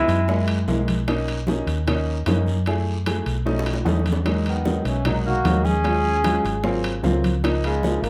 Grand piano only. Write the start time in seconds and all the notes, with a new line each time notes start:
Already playing: E3 B3 D#4
0.28 G#3 A#3 E4
0.68 G#3 A#3 E4
1.08 A#3 C#4 D#4
1.48 A#3 C#4 D#4
1.87 A#3 C#4 D#4
2.27 A#3 C#4 D#4
2.67 A3 E4 G#4
3.06 A3 E4 G#4
3.45 A3 C#4 D#4
3.85 A3 C#4 D#4 F#5
3.95 D#5
4.25 F#3 G#3 A#3 D#4
4.66 F#3 G#3 A#3 D#4
5.05 F#3 G#3 A#3 D#4
5.45 F#3 G#3 A#3 D#4
5.85 F#3 G#3 C#4 F4
6.24 F#3 G#3 C#4 F4
6.64 F#3 A#3 C4 F4
7.03 F#3 A#3 C4 F4
7.43 F3 A#3 D#4
7.84 F3 A#3 D#4